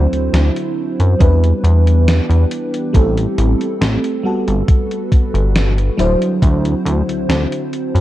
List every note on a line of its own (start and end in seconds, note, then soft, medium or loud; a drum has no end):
0.00 1.18 D3 medium
0.00 1.12 F#3 medium
0.00 1.18 C4 medium
0.00 1.12 D4 medium
0.00 1.13 E4 medium
0.00 1.18 E4 medium
0.00 1.17 F#4 medium
0.00 1.13 C5 loud
0.12 0.29 D2 soft
0.12 closed hi-hat soft
0.33 0.50 D2 medium
0.33 snare loud
0.33 closed hi-hat medium
0.56 closed hi-hat soft
1.00 1.15 F#2 medium
1.00 closed hi-hat soft
1.19 1.53 E2 medium
1.19 2.93 E3 medium
1.19 2.85 G3 medium
1.19 2.93 B3 medium
1.19 2.86 D4 medium
1.19 2.93 D4 medium
1.19 2.86 E4 medium
1.19 4.22 G4 medium
1.19 2.87 B4 medium
1.19 kick loud
1.19 closed hi-hat medium
1.44 closed hi-hat soft
1.64 2.20 E2 loud
1.64 closed hi-hat medium
1.87 closed hi-hat soft
2.08 snare loud
2.08 closed hi-hat medium
2.29 2.45 E2 loud
2.29 closed hi-hat soft
2.51 closed hi-hat medium
2.74 closed hi-hat soft
2.93 3.27 A1 loud
2.93 4.16 G3 medium
2.93 4.24 A3 medium
2.93 4.16 C4 medium
2.93 4.24 C4 medium
2.93 4.17 E4 medium
2.93 4.17 A4 medium
2.93 kick loud
2.93 closed hi-hat medium
3.17 closed hi-hat soft
3.38 3.55 A1 loud
3.38 closed hi-hat medium
3.61 closed hi-hat soft
3.81 3.98 A1 medium
3.81 snare loud
3.81 closed hi-hat medium
4.04 closed hi-hat soft
4.23 5.90 G3 medium
4.23 5.97 G3 medium
4.23 5.90 B3 medium
4.23 8.01 F#4 medium
4.23 5.91 F#4 medium
4.23 5.97 A4 medium
4.23 5.91 A4 medium
4.23 5.97 B4 medium
4.48 4.63 G1 medium
4.48 closed hi-hat soft
4.68 kick loud
4.68 closed hi-hat medium
4.91 closed hi-hat soft
5.12 kick loud
5.12 closed hi-hat medium
5.34 5.90 G1 medium
5.34 closed hi-hat soft
5.56 snare loud
5.56 closed hi-hat medium
5.78 closed hi-hat soft
5.97 6.15 D1 medium
5.97 8.01 D3 medium
5.97 8.01 F#3 medium
5.97 8.01 C4 medium
5.97 8.01 D4 medium
5.97 8.01 E4 medium
5.97 8.01 C5 loud
5.97 closed hi-hat medium
6.22 closed hi-hat soft
6.42 6.75 D2 loud
6.42 kick loud
6.42 closed hi-hat medium
6.65 closed hi-hat soft
6.85 7.02 D2 loud
6.85 closed hi-hat medium
7.08 7.25 D2 soft
7.08 closed hi-hat soft
7.29 7.46 D2 medium
7.29 snare loud
7.29 closed hi-hat loud
7.52 closed hi-hat soft
7.73 closed hi-hat soft
7.95 8.01 F#2 medium
7.95 closed hi-hat soft